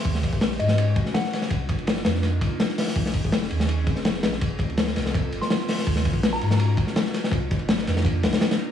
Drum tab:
RD |x-x-x-x-x-x-x-x-|x-xxx-x-x-x-x---|x-x-x-x-x-x-x-x-|x-xxx-x-x-x-x---|
HH |----------------|--------------o-|----------------|--------------o-|
SD |-o--oo-o---ooooo|----ooooo---oooo|-o--oo-o---ooooo|----oooo---ooooo|
BD |o-oo------o-----|o-o-------o-----|o-oo------o-----|o-o-----o-------|

RD |x-x-x-x-x-x-x-x-|x-xxx-x-x-xxxx--|
HH |----------------|----------------|
SD |-o--oo-o---ooooo|----oooo--oooo--|
BD |o-oo------o-----|o-o-----o-------|